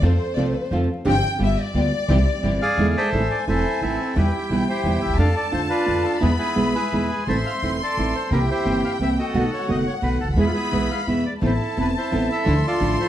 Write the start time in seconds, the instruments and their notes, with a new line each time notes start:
0.02 upright bass F2, nylon-string guitar C3 F3 A3 C4 F4, string section C4 F4 A4, violin section C5
0.35 upright bass C2, nylon-string guitar C3 F3 A3 C4 F4, string section C4 F4 A4, violin section D5
0.44 violin section C5
0.54 violin section B4
0.64 violin section C5
0.71 upright bass F2, nylon-string guitar C3 F3 A3 C4 F4, string section C4 F4 A4
1.05 upright bass G1, nylon-string guitar C3 F3 C4 D4 G4, string section C4 F4 G4, violin section G5
1.39 upright bass G1, nylon-string guitar G3 B3 F4, string section B3 F4 G4
1.44 violin section E5
1.61 violin section D5
1.74 upright bass D2, nylon-string guitar G3 B3 F4, string section B3 F4 G4
2.08 upright bass C2, nylon-string guitar C3 E3 G3 C4 E4, string section C4 E4 G4
2.43 upright bass G1, nylon-string guitar C3 E3 G3 C4 E4, string section C4 E4 G4
2.62 bandoneon G#4 D5 F5
2.77 upright bass E2, nylon-string guitar B2 D3 G#3 B3 E4, string section D4 E4 G#4
2.90 bandoneon F5
2.97 bandoneon A4 C5 E5
3.13 upright bass A1, nylon-string guitar E3 A3 C4 E4, violin section G#5
3.31 bandoneon D5
3.48 upright bass E1, nylon-string guitar E3 A3 C4 E4, bandoneon E4 A4 C5
3.81 upright bass A1, nylon-string guitar E3 A3 C4 E4, bandoneon C4 E4 A4
4.15 upright bass E2, nylon-string guitar B2 E3 G3 B3 E4, bandoneon E4 G4 B4, violin section G5
4.35 bandoneon G4
4.49 upright bass B1, nylon-string guitar B2 E3 G3 B3 E4, bandoneon B4
4.69 bandoneon E4 G4 C5
4.84 upright bass E2, nylon-string guitar B2 E3 G3 B3 E4
5.02 upright bass D2, bandoneon E5
5.09 upright bass D#2
5.14 upright bass E2, violin section A5
5.18 upright bass F2, nylon-string guitar D3 A3 D4 F4, bandoneon A4 D5 F5
5.36 bandoneon D5
5.51 upright bass F2, nylon-string guitar D3 A3 D4 F4, bandoneon C5
5.70 bandoneon D4 F4 B4
5.86 upright bass F2, nylon-string guitar D3 A3 D4 F4
6.04 bandoneon A4
6.20 upright bass E2, nylon-string guitar B2 E3 G#3 B3 E4, bandoneon B3 E4 G#4, violin section B5
6.38 bandoneon E4 G#4 B4
6.55 upright bass B1, nylon-string guitar B2 E3 G#3 B3 E4
6.75 bandoneon G#4 B4 E5
6.92 upright bass E2, nylon-string guitar B2 E3 G#3 B3 E4
7.11 bandoneon G#5
7.26 upright bass A1, nylon-string guitar E3 A3 C4 E4, bandoneon C5 E5 A5, violin section C6
7.46 bandoneon F5
7.62 upright bass E1, nylon-string guitar E3 A3 C4 E4, bandoneon E5
7.83 bandoneon A4 D5
7.97 upright bass A1, nylon-string guitar E3 A3 C4 E4
8.15 bandoneon C5
8.31 upright bass C2, nylon-string guitar C3 E3 A#3 C4 E4, bandoneon E4 G4 A#4, violin section G5
8.51 bandoneon E4 G4 C5
8.65 upright bass G1, nylon-string guitar C3 E3 A#3 C4 E4
8.85 bandoneon F5
8.99 upright bass C2, nylon-string guitar C3 E3 A#3 C4 E4, bandoneon E5
9.19 bandoneon F#4 A4 D#5
9.34 upright bass B1, nylon-string guitar B2 D#3 A3 B3 F#4, violin section F#5
9.53 bandoneon C#5
9.67 upright bass F#1, nylon-string guitar B2 D#3 A3 B3 F#4, bandoneon D#5
9.87 bandoneon C#5
10.02 upright bass B1, nylon-string guitar B2 D#3 A3 B3 F#4, bandoneon B4
10.21 upright bass C#2, bandoneon A4
10.28 upright bass D2
10.33 upright bass D#2 E2, nylon-string guitar B2 E3 G#3 B3 E4, violin section B5
10.39 bandoneon B3 E4 G#4
10.46 bandoneon F4
10.54 bandoneon B3 E4 G#4
10.72 upright bass B1, nylon-string guitar B2 E3 G#3 B3 E4
10.91 bandoneon F5
11.07 upright bass E2, nylon-string guitar B2 E3 G#3 B3 E4, bandoneon E5
11.26 bandoneon D5
11.40 upright bass A1, nylon-string guitar E3 B3 C4 E4, string section B3 C4 A4, violin section A5
11.45 bandoneon E4 C5
11.61 bandoneon A4
11.76 upright bass E1, nylon-string guitar E3 B3 C4 E4, string section B3 C4 A4
11.81 bandoneon B4
11.98 bandoneon E4 C5
12.11 upright bass A1, nylon-string guitar E3 B3 C4 E4, string section B3 C4 A4
12.32 bandoneon A4 E5
12.45 upright bass D2, nylon-string guitar D3 F3 A3 D4 E4, string section F3 D4 E4, violin section C6
12.67 bandoneon F4 A4 D5
12.80 upright bass A1, nylon-string guitar D3 F3 A3 D4 E4, string section F3 D4 E4
13.00 bandoneon E4 F4 C5